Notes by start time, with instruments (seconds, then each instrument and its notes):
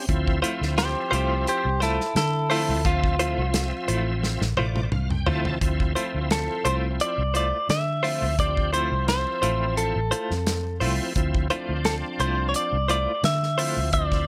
0.09 fingered electric bass D2, tonewheel organ F3 C4 E4, kick, closed hi-hat
0.27 kick
0.42 tonewheel organ F3 C4 E4, clean electric guitar A3 E4 F4 C5, closed hi-hat
0.61 fingered electric bass D2, snare
0.78 clean electric guitar G4 C5, snare, closed hi-hat
1.11 fingered electric bass C2, clean electric guitar A3 E4 F4 G4 C5, closed hi-hat
1.47 clean electric guitar G4 C5, closed hi-hat
1.65 fingered electric bass C2
1.80 clean electric guitar A3 E4 F4 A4 C5, snare, closed hi-hat
2.01 snare
2.15 fingered electric bass D3, clean electric guitar E4 A4, snare, closed hi-hat
2.50 tonewheel organ F3 C4 E4, clean electric guitar A3 E4 F4 A4 C5, open hi-hat
2.69 fingered electric bass D2
2.85 fingered electric bass D2, tonewheel organ F3 C4 E5, clean electric guitar F4, kick, closed hi-hat
3.04 kick
3.19 tonewheel organ F3 C4 E5, clean electric guitar A3 E4 F4 C5, closed hi-hat
3.38 fingered electric bass C2
3.54 snare, closed hi-hat
3.88 fingered electric bass A1, clean electric guitar A3 E4 F4 C5, closed hi-hat
4.23 snare
4.41 fingered electric bass A1, snare
4.57 fingered electric bass A1, clean electric guitar A3 E4 F4 C5, tonewheel organ D5, high tom
4.76 high tom
4.92 fingered electric bass C2, tonewheel organ F5, mid tom
5.10 tonewheel organ G5, mid tom
5.26 fingered electric bass D2, tonewheel organ F3 C4 E4 A5, clean electric guitar A3 E4 F4 C5, floor tom
5.45 floor tom
5.61 fingered electric bass D2, tonewheel organ F3 C4 E4, kick, closed hi-hat
5.80 kick
5.95 tonewheel organ F3 C4 E4, clean electric guitar A3 E4 F4 C5, closed hi-hat
6.14 fingered electric bass D2
6.31 clean electric guitar A4, snare, closed hi-hat
6.65 fingered electric bass C2, clean electric guitar A3 E4 F4 C5, closed hi-hat
7.00 clean electric guitar D5, closed hi-hat
7.18 fingered electric bass C2
7.34 clean electric guitar A3 E4 F4 C5 D5, closed hi-hat
7.69 fingered electric bass D3, clean electric guitar E5, snare, closed hi-hat
8.03 tonewheel organ F3 C4 E4, clean electric guitar A3 E4 F4 C5, open hi-hat
8.22 fingered electric bass D2
8.39 fingered electric bass D2, tonewheel organ F3 C4 G4, clean electric guitar D5, kick, closed hi-hat
8.57 kick
8.73 tonewheel organ F3 C4 E4, clean electric guitar A3 E4 F4 C5, closed hi-hat
8.92 fingered electric bass C2
9.08 clean electric guitar C5, snare, closed hi-hat
9.42 fingered electric bass A1, clean electric guitar A3 E4 F4 C5, closed hi-hat
9.77 clean electric guitar A4, closed hi-hat
9.96 fingered electric bass A1
10.11 clean electric guitar A3 E4 F4 C5, closed hi-hat
10.31 fingered electric bass F2, snare
10.47 snare, closed hi-hat
10.80 fingered electric bass C2, tonewheel organ F3 C4 E4, clean electric guitar A3 E4 F4 C5, open hi-hat
11.15 fingered electric bass D2, tonewheel organ F3 C4 E4, kick, closed hi-hat
11.35 kick
11.50 tonewheel organ F3 C4 D4, clean electric guitar A3 E4 F4 C5, closed hi-hat
11.69 fingered electric bass D2
11.85 clean electric guitar A4, snare, closed hi-hat
12.20 fingered electric bass C2, clean electric guitar A3 E4 F4 C5, closed hi-hat
12.49 clean electric guitar C#5
12.54 clean electric guitar D5, closed hi-hat
12.72 fingered electric bass C2
12.88 clean electric guitar A3 E4 F4 C5 D5, closed hi-hat
13.23 fingered electric bass D3, clean electric guitar E5, snare, closed hi-hat
13.43 snare
13.58 tonewheel organ F3 C4 E4, clean electric guitar A3 E4 F4 C5, open hi-hat
13.77 fingered electric bass D2
13.93 fingered electric bass D2, tonewheel organ F3 C4 E4, clean electric guitar D5, kick, closed hi-hat
14.12 kick, snare